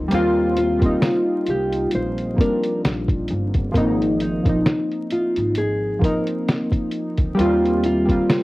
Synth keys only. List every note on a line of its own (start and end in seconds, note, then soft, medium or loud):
0.00 0.12 F3 medium
0.00 0.10 A#3 medium
0.00 0.12 C4 medium
0.00 0.12 D#4 medium
0.08 0.61 G3 medium
0.08 0.62 A#3 medium
0.12 0.63 C4 medium
0.12 0.64 F4 loud
0.79 1.97 G3 medium
0.79 1.98 A#3 medium
0.79 1.99 C4 medium
0.85 2.00 D#4 medium
2.34 2.43 F3 medium
2.34 3.40 A#3 medium
2.39 3.43 G3 medium
2.39 3.41 C4 medium
2.39 3.42 D4 medium
3.72 4.25 F3 medium
3.72 4.26 A#3 medium
3.76 4.27 C4 medium
3.76 4.27 D#4 loud
4.43 5.61 F3 medium
4.43 5.62 A#3 medium
4.43 5.63 C4 medium
4.49 5.64 D#4 medium
5.99 7.04 F3 medium
5.99 7.05 A#3 medium
5.99 7.06 C4 medium
6.05 7.07 D#4 medium
7.35 7.88 G3 loud
7.35 7.89 A#3 medium
7.35 7.90 C4 medium
7.40 7.91 F4 loud
8.06 8.43 G3 medium
8.06 8.43 A#3 medium
8.06 8.43 C4 medium
8.12 8.43 F4 medium